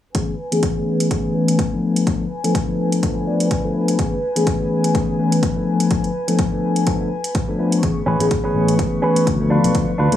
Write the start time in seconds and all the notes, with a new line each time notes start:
0.15 E3 A3 B3 C#4 G#4 B4 G#5, kick, closed hi-hat
0.52 E3 A3 B3 C#4 G#4, closed hi-hat
0.63 kick, closed hi-hat
0.76 E3 A3 B3 C#4 G#4
1.00 closed hi-hat
1.10 E3 A3 B3 C#4 G#4, kick, closed hi-hat
1.34 E3 A3 B3 C#4 B4
1.48 closed hi-hat
1.59 kick, closed hi-hat
1.72 F3 A3 B3 D4 A4
1.96 closed hi-hat
2.07 F3 A3 B3 D4 A4, kick, closed hi-hat
2.44 F3 A3 B3 D4 A4, closed hi-hat
2.55 kick, closed hi-hat
2.68 F3 A3 B3 D4 A4
2.92 closed hi-hat
3.03 F3 A3 B3 D4 A4, kick, closed hi-hat
3.26 F3 A3 B3 D4 D5
3.40 closed hi-hat
3.51 kick, closed hi-hat
3.64 F3 A3 B3 D4 A4
3.88 closed hi-hat
3.98 E3 A3 B3 C#4 G#4, kick, closed hi-hat
4.36 E3 A3 B3 C#4 G#4, closed hi-hat
4.47 kick, closed hi-hat
4.59 E3 A3 B3 C#4 G#4
4.84 closed hi-hat
4.94 E3 A3 B3 C#4 G#4, kick, closed hi-hat
5.18 E3 A3 B3 C#4 B4
5.32 closed hi-hat
5.43 kick, closed hi-hat
5.56 F3 A3 B3 D4 A4
5.80 closed hi-hat
5.90 F3 A3 B3 D4 A4, kick, closed hi-hat
6.04 closed hi-hat
6.28 F3 A3 B3 D4 A4, closed hi-hat
6.39 kick, closed hi-hat
6.52 F3 A3 B3 D4 A4
6.76 closed hi-hat
6.86 F3 A3 B3 D4 A4, kick, closed hi-hat
7.24 closed hi-hat
7.35 kick, closed hi-hat
7.48 F3 A3 B3 D4 A4
7.59 F3 A3 B3 D4 B4
7.72 closed hi-hat
7.83 A1 E3 A3 B3 C#4 G#4 B4 C#6, kick, closed hi-hat, maracas
7.96 maracas
8.06 A1 C#4 G#4 B4
8.20 A1 E3 A3 B3 C#4 G#4, closed hi-hat, maracas
8.30 kick, closed hi-hat, maracas
8.44 E3 A3 B3 C#4 G#4 B4, maracas
8.54 A1
8.68 closed hi-hat, maracas
8.78 E3 A3 B3 C#4 G#4, kick, closed hi-hat, maracas
8.93 maracas
9.02 E3 A3 B3 C#4 G#4 B4
9.16 muted fingered electric bass stroke, closed hi-hat, maracas
9.26 D2, kick, closed hi-hat, maracas
9.40 F3 A3 B3 D4 A4, maracas
9.50 D4 F4 B4
9.64 B1, closed hi-hat, maracas
9.75 D2 F3 A3 B3 D4 A4, kick, closed hi-hat
9.88 maracas
9.98 D2 D4 F4 B4
10.12 D2 F3 A3 B3 D4 A4, closed hi-hat, maracas